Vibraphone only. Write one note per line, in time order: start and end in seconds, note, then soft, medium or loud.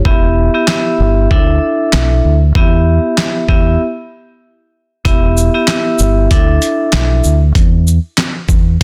0.05 0.50 B3 loud
0.05 0.50 E4 medium
0.05 0.51 G4 medium
0.05 0.51 E5 loud
0.54 0.67 B3 medium
0.54 0.67 E4 medium
0.54 0.68 G4 medium
0.54 0.68 E5 loud
0.68 1.26 B3 medium
0.68 1.27 E4 medium
0.68 1.27 G4 medium
0.68 1.27 E5 loud
1.31 2.33 D4 loud
1.31 2.33 E4 medium
1.31 2.33 A4 medium
1.31 2.33 E5 loud
2.56 3.43 B3 medium
2.56 3.43 E4 medium
2.56 3.43 G4 medium
2.56 3.44 E5 loud
3.48 3.80 B3 medium
3.48 3.80 E4 medium
3.48 3.80 G4 medium
3.48 3.80 E5 loud
5.05 5.50 B3 medium
5.05 5.50 E4 medium
5.05 5.51 G4 medium
5.05 5.51 E5 loud
5.54 5.67 B3 medium
5.54 5.67 E4 medium
5.54 5.68 G4 medium
5.54 5.68 E5 loud
5.68 6.26 B3 medium
5.68 6.27 E4 medium
5.68 6.27 G4 medium
5.68 6.27 E5 loud
6.31 7.33 D4 loud
6.31 7.33 E4 medium
6.31 7.33 A4 medium
6.31 7.33 E5 loud